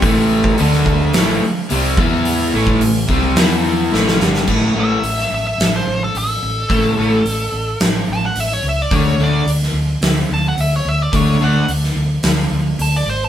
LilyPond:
<<
  \new Staff \with { instrumentName = "Lead electric guitar" } { \time 4/4 \key d \major \tempo 4 = 108 r1 | r1 | r8 e''4 e''16 e''8 c''8 a'16 a'4~ | a'2 r8 a''16 fis''16 e''16 cis''16 e''16 d''16 |
cis''8 d''8 r4. a''16 fis''16 e''16 cis''16 e''16 d''16 | cis''8 fis''8 r2 a''16 d''16 c''16 a''16 | }
  \new Staff \with { instrumentName = "Distorted electric guitar" } { \clef bass \time 4/4 \key d \major <a, e a>4 <d a d'>4 <a, e a>8 r8 <c g c'>8 <e b e'>8~ | <e b e'>8 <a, e a>8 <a, e>8 <c g c'>8 <e b e'>4 <a, e a>8 <g, d g>8 | <a, e a>8 <a, e a>8 r2. | <a, e a>8 <a, e a>8 r2. |
<d a d'>8 <d a d'>8 r2. | <d a d'>8 <d a d'>8 r2. | }
  \new Staff \with { instrumentName = "Overdriven electric guitar" } { \clef bass \time 4/4 \key d \major <a, e a>4 <d a d'>4 <a, e a>8 r8 <c g c'>8 <e b e'>8~ | <e b e'>8 <a, e a>8 <a, e>8 <c g c'>8 <e b e'>4 <a, e a>8 <g, d g>8 | <a, e a>8 <a, e a>8 r2. | <a, e a>8 <a, e a>8 r2. |
<d a d'>8 <d a d'>8 r2. | <d a d'>8 <d a d'>8 r2. | }
  \new Staff \with { instrumentName = "Fingered electric bass" } { \clef bass \time 4/4 \key d \major a,,4 d,4 a,,8 r8 c,8 e,8~ | e,8 a,,8 a,,8 c,8 e,4 a,,8 g,,8 | a,,8 a,,8 a,,8 a,,8 a,,8 a,,8 a,,8 a,,8 | a,,8 a,,8 a,,8 a,,8 a,,8 a,,8 a,,8 cis,8 |
d,8 d,8 d,8 d,8 d,8 d,8 d,8 d,8 | d,8 d,8 d,8 d,8 d,8 d,8 d,8 gis,,8 | }
  \new DrumStaff \with { instrumentName = "Drums" } \drummode { \time 4/4 <hho bd>8. bd16 hho16 sn16 bd8 <hho sn>4 hho8 bd8 | hho8. bd16 hho8 bd8 <hho sn>4 sn16 sn16 sn16 sn16 | <cymc bd>4 hho16 sn8. <hho sn>4 hho4 | <hho bd>4 hho4 <hho sn>4 hho4 |
<hho bd>4 hho16 sn8. <hho sn>4 hho4 | <hho bd>4 hho16 sn8. <hho sn>4 hho4 | }
>>